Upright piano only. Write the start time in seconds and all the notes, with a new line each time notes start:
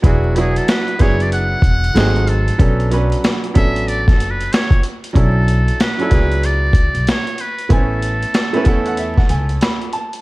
0.02 F#3 B3 D4 E4 G#4
0.35 F#3 B3 D4 E4 F#4
0.98 F#3 B3 D4 E4 G#4
1.95 F#3 A3 C4 D#4 G#4
2.58 F#3 B3 C#4 D4 A4
2.90 F#3 B3 C#4 D4 B4
3.54 F#3 B3 C#4 D4 A4
5.13 F#3 C#4 D4 E4 A4
5.98 F#3 C#4 D4 E4 A4
6.09 F#3 B3 D4 E4 G#4
7.69 A3 B3 C4 E4 G#5
7.77 C#4
8.53 A3 B3 C#4 E4 B4
8.64 A3 B3 C#4 E4 A4 F#5
8.87 F#5
8.98 E5
9.17 F#5
9.30 G#5
9.62 B5
9.93 A5